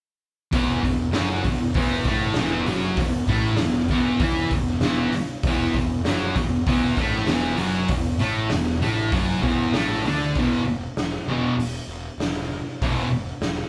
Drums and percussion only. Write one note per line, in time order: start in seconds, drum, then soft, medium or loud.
0.52 kick loud
0.52 open hi-hat medium
0.84 kick medium
0.84 open hi-hat medium
1.13 snare loud
1.13 open hi-hat medium
1.44 kick medium
1.44 open hi-hat medium
1.74 kick loud
1.74 open hi-hat medium
2.04 kick medium
2.04 open hi-hat medium
2.34 snare loud
2.34 open hi-hat medium
2.66 open hi-hat medium
2.97 kick loud
2.97 open hi-hat medium
3.27 kick medium
3.27 open hi-hat medium
3.57 snare loud
3.57 open hi-hat medium
3.88 kick medium
3.88 open hi-hat medium
4.20 kick loud
4.20 open hi-hat medium
4.51 kick medium
4.51 open hi-hat medium
4.67 snare soft
4.81 snare loud
4.81 open hi-hat medium
5.12 open hi-hat medium
5.43 kick loud
5.43 open hi-hat medium
5.74 kick medium
5.74 open hi-hat medium
6.05 snare loud
6.05 open hi-hat medium
6.36 kick medium
6.36 open hi-hat medium
6.66 kick loud
6.66 open hi-hat medium
6.97 kick medium
6.97 open hi-hat medium
7.12 snare soft
7.26 snare loud
7.26 open hi-hat medium
7.58 open hi-hat medium
7.88 kick loud
7.88 open hi-hat medium
8.19 open hi-hat medium
8.50 snare loud
8.50 open hi-hat medium
8.82 open hi-hat medium
9.12 kick loud
9.12 open hi-hat medium
9.43 kick medium
9.43 open hi-hat medium
9.74 snare loud
9.74 open hi-hat medium
10.05 open hi-hat medium
10.35 kick loud
10.35 open hi-hat medium
10.97 snare loud
10.97 open hi-hat medium
11.60 open hi-hat medium
12.20 snare loud
12.20 open hi-hat medium
12.82 kick loud
12.82 open hi-hat medium
13.42 snare loud
13.42 open hi-hat medium